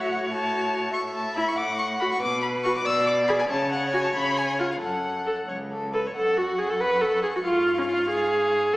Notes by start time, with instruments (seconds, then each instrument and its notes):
Already playing: cello A2, viola F#4, violin C#5
0.01 violin E5
0.12 violin F#5
0.30 viola F#4, violin A5
0.93 cello A2, violin E5 C#6
1.15 violin A5
1.36 viola E4, violin B5
1.49 violin C#6
1.56 cello A2, violin F#5 D6
1.79 violin C#6
2.00 viola F#4, violin B5
2.12 violin C#6
2.21 cello B2, violin B4 D6
2.42 violin B5
2.63 viola F#4, violin C#6
2.76 violin D6
2.85 cello B2, violin D5 E6
3.07 violin D6
3.28 viola G#4, violin B5
3.39 violin G#5
3.49 cello C#3, violin C#5 A5
3.72 violin F#5
3.92 viola F#4, violin G#5
4.03 violin A5
4.14 cello C#3, violin B5
4.37 violin G#5
4.59 viola F4, violin F#5
4.72 violin F5
4.81 cello F#2, violin A4 F#5
5.26 viola A4
5.48 cello C#2, violin C#5
5.70 violin A4
5.93 viola A4, violin B4
6.07 violin C#5
6.15 cello F#2, viola A4, violin F#5 C#6
6.37 viola F#4
6.58 viola G#4
6.70 viola A4
6.80 viola B4
7.01 viola A4
7.23 viola G#4
7.36 viola F#4
7.45 cello G#2, viola F4, violin F5
7.78 viola C#4
7.88 viola F4
8.10 viola G#4
8.73 cello F#2, viola A4, violin F#5 C#6